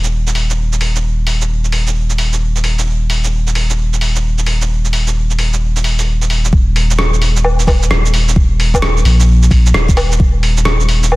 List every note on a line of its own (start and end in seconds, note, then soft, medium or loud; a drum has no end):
0.00 6.51 D#1 medium
0.04 shaker soft
0.27 shaker soft
0.35 open hi-hat medium
0.50 shaker soft
0.73 shaker soft
0.81 open hi-hat medium
0.96 shaker soft
1.27 open hi-hat medium
1.42 shaker medium
1.64 shaker soft
1.72 open hi-hat medium
1.87 shaker soft
2.10 shaker soft
2.18 open hi-hat medium
2.33 shaker soft
2.56 shaker soft
2.64 open hi-hat medium
2.79 shaker soft
3.10 open hi-hat medium
3.24 shaker medium
3.47 shaker soft
3.55 open hi-hat medium
3.70 shaker soft
3.93 shaker soft
4.01 open hi-hat medium
4.16 shaker soft
4.39 shaker soft
4.46 open hi-hat medium
4.62 shaker soft
4.85 shaker soft
4.93 open hi-hat medium
5.07 shaker medium
5.31 shaker soft
5.39 open hi-hat medium
5.54 shaker medium
5.77 shaker soft
5.84 open hi-hat medium
5.99 open hi-hat soft
5.99 shaker soft
6.22 shaker soft
6.30 open hi-hat medium
6.45 shaker medium
6.52 7.89 D#1 loud
6.52 kick loud
6.76 open hi-hat medium
6.91 shaker medium
6.98 cross-stick loud
7.14 shaker soft
7.22 open hi-hat medium
7.37 shaker medium
7.44 low woodblock medium
7.60 shaker soft
7.67 kick medium
7.67 open hi-hat medium
7.67 low woodblock medium
7.83 shaker medium
7.90 9.04 D#1 loud
7.90 cross-stick loud
8.06 shaker soft
8.14 open hi-hat medium
8.29 shaker medium
8.36 kick loud
8.60 open hi-hat medium
8.74 kick medium
8.74 low woodblock medium
8.74 shaker medium
8.82 cross-stick loud
8.97 shaker soft
9.05 9.50 A#1 medium
9.05 open hi-hat medium
9.20 shaker medium
9.43 shaker soft
9.51 9.72 A#1 loud
9.51 kick loud
9.51 open hi-hat medium
9.66 shaker medium
9.74 11.16 D#1 loud
9.74 cross-stick loud
9.89 kick loud
9.89 shaker soft
9.97 open hi-hat medium
9.97 low woodblock medium
10.12 shaker medium
10.20 kick loud
10.43 open hi-hat medium
10.57 shaker medium
10.65 cross-stick loud
10.80 shaker soft
10.89 open hi-hat medium
11.04 shaker medium
11.12 low woodblock medium